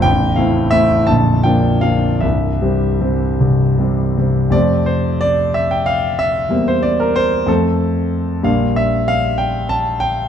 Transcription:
<<
  \new Staff \with { instrumentName = "Grand piano" } { \time 6/8 \key f \major \tempo 4. = 61 g''8 f''8 e''8 a''8 g''8 f''8 | e''2~ e''8 r8 | d''8 c''8 d''8 e''16 g''16 f''8 e''8~ | e''16 c''16 d''16 bes'16 c''8 a'4. |
f''8 e''8 f''8 g''8 a''8 g''8 | }
  \new Staff \with { instrumentName = "Grand piano" } { \clef bass \time 6/8 \key f \major <a,,, a,,>8 <a c' e'>8 <a c' e'>8 <bes,,, bes,,>8 <f bes d'>8 <f bes d'>8 | <c,, c,>8 <c g c'>8 <c g c'>8 <c,, c,>8 <c g c'>8 <c g c'>8 | <f, c a c'>2. | <e, g bes c'>4. <f, a c'>4. |
<bes,, g bes d'>2. | }
>>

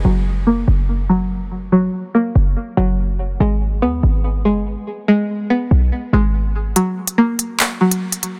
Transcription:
<<
  \new Staff \with { instrumentName = "Synth pluck" } { \clef bass \time 4/4 \key fis \mixolydian \tempo 4 = 143 fis4 ais4. fis4. | fis4 ais4. fis4. | gis4 b4. gis4. | gis4 b4. gis4. |
fis4 ais4. fis4. | }
  \new Staff \with { instrumentName = "808-style bass" } { \clef bass \time 4/4 \key fis \mixolydian fis,,4. fis,,2~ fis,,8~ | fis,,8 r4 fis,,8 r8 fis,,4. | gis,,4 dis,8 gis,,4 fis,,16. gis,,16. r8. | r4. b,,8 r8 gis,,4. |
r1 | }
  \new DrumStaff \with { instrumentName = "Drums" } \drummode { \time 4/4 r4 r4 r4 r4 | r4 r4 r4 r4 | r4 r4 r4 r4 | r4 r4 r4 r4 |
hh8. hh16 r8 hh8 <hc hh>8. hh16 r16 hh16 hh8 | }
>>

